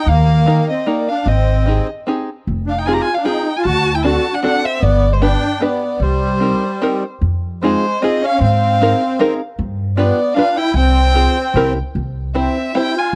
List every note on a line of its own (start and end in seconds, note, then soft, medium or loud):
0.00 0.11 G5 medium
0.06 0.58 D#2 medium
0.06 0.69 A#3 loud
0.06 0.69 F5 medium
0.46 0.68 A#3 medium
0.46 0.68 D#4 medium
0.46 0.69 G4 medium
0.46 0.69 A#4 medium
0.69 0.86 C4 medium
0.69 0.88 D#5 medium
0.85 1.07 A#3 medium
0.85 1.08 A#3 medium
0.85 1.08 D#4 medium
0.85 1.08 G4 soft
0.85 1.09 A#4 medium
0.85 1.10 D5 medium
1.08 1.27 D4 medium
1.08 1.29 F5 medium
1.26 1.78 G#1 medium
1.26 1.87 C4 medium
1.26 1.88 D#5 medium
1.66 1.88 C4 soft
1.66 1.88 D#4 medium
1.66 1.89 G4 soft
1.66 1.89 G#4 medium
2.07 2.28 C4 medium
2.07 2.29 D#4 medium
2.07 2.29 G4 medium
2.07 2.29 G#4 medium
2.47 2.99 F1 medium
2.67 2.76 D4 medium
2.67 2.80 F5 medium
2.78 2.87 D#4 medium
2.78 2.88 G5 medium
2.86 3.08 C4 medium
2.86 3.08 D#4 medium
2.86 2.94 F4 medium
2.86 3.09 F4 soft
2.86 3.09 G#4 medium
2.86 2.95 G#5 medium
2.93 3.01 G4 medium
2.93 3.04 A#5 medium
3.00 3.16 F4 medium
3.00 3.16 G#5 loud
3.15 3.26 D4 medium
3.15 3.27 F5 medium
3.24 3.47 C4 soft
3.24 3.56 D#4 medium
3.24 3.47 D#4 soft
3.24 3.47 F4 soft
3.24 3.47 G#4 medium
3.24 3.58 G5 medium
3.56 3.66 F4 medium
3.56 3.65 G#5 medium
3.64 4.16 D2 medium
3.64 3.93 F#4 loud
3.64 3.97 A5 loud
3.95 4.04 E4 medium
3.95 4.04 G5 medium
4.03 4.25 C4 medium
4.03 4.26 D4 medium
4.03 4.26 F#4 medium
4.03 4.35 F#4 medium
4.03 4.26 A4 medium
4.03 4.36 A5 medium
4.33 4.41 D4 medium
4.33 4.43 F#5 medium
4.42 4.64 C4 medium
4.42 4.63 D4 medium
4.42 4.65 D4 medium
4.42 4.65 F#4 medium
4.42 4.65 A4 medium
4.42 4.66 F#5 loud
4.62 4.81 C4 medium
4.62 4.85 E5 medium
4.79 5.34 G1 medium
4.79 5.11 B3 medium
4.79 5.14 D5 medium
5.11 5.21 G#3 medium
5.11 5.23 C5 medium
5.21 5.43 B3 medium
5.21 5.61 D4 medium
5.21 5.43 D4 medium
5.21 5.43 G4 medium
5.21 5.44 B4 medium
5.21 5.64 G5 medium
5.60 6.00 B3 medium
5.60 5.82 B3 soft
5.60 5.83 D4 soft
5.60 5.83 G4 soft
5.60 5.83 B4 medium
5.60 6.04 D5 medium
6.00 6.53 C2 medium
6.00 7.03 G3 medium
6.00 7.05 C5 medium
6.40 6.62 C4 medium
6.40 6.63 D#4 soft
6.40 6.63 G4 soft
6.40 6.64 A#4 medium
6.82 7.04 C4 medium
6.82 7.04 D#4 medium
6.82 7.04 G4 medium
6.82 7.04 A#4 medium
7.21 7.73 F2 medium
7.63 7.99 G#3 medium
7.63 7.84 C4 medium
7.63 7.84 D#4 medium
7.63 7.85 F4 medium
7.63 7.85 G#4 medium
7.63 8.03 C5 medium
8.00 8.22 C4 medium
8.00 8.23 C4 medium
8.00 8.23 D#4 soft
8.00 8.24 F4 medium
8.00 8.24 G#4 medium
8.00 8.27 D#5 medium
8.21 8.40 C#4 medium
8.25 8.42 F5 loud
8.38 8.91 G#2 medium
8.38 9.34 C4 medium
8.43 9.37 F5 medium
8.81 9.02 C4 medium
8.81 9.02 D#4 medium
8.81 9.02 G#4 medium
8.81 9.02 A#4 medium
9.19 9.40 C4 medium
9.19 9.40 D#4 medium
9.19 9.40 G#4 medium
9.19 9.41 A#4 medium
9.59 10.09 G2 medium
9.97 10.33 B3 medium
9.97 10.18 D4 medium
9.97 10.18 F4 medium
9.97 10.19 G4 medium
9.97 10.19 B4 medium
9.97 10.36 D5 medium
10.34 10.56 D4 medium
10.34 10.57 D4 medium
10.34 10.57 F4 medium
10.34 10.58 G4 medium
10.34 10.58 F5 loud
10.38 10.58 B4 medium
10.56 10.75 E4 medium
10.56 10.75 G5 loud
10.74 11.26 C2 medium
10.74 11.73 C4 loud
10.74 11.73 G5 loud
11.14 11.36 C4 medium
11.14 11.36 F4 medium
11.14 11.37 G#4 soft
11.14 11.37 C5 medium
11.54 11.80 C2 medium
11.54 11.77 C4 medium
11.54 11.77 E4 medium
11.54 11.77 G4 medium
11.54 11.77 A#4 medium
11.95 12.47 C2 medium
12.35 12.56 C4 medium
12.35 12.72 C4 medium
12.35 12.56 E4 medium
12.35 12.56 G4 medium
12.35 12.57 C5 medium
12.35 12.77 E5 medium
12.74 12.96 C4 medium
12.74 12.95 E4 medium
12.74 12.96 E4 medium
12.74 12.96 G4 medium
12.74 12.97 C5 medium
12.74 13.00 G5 medium
12.96 13.14 F4 medium
12.96 13.14 G#5 medium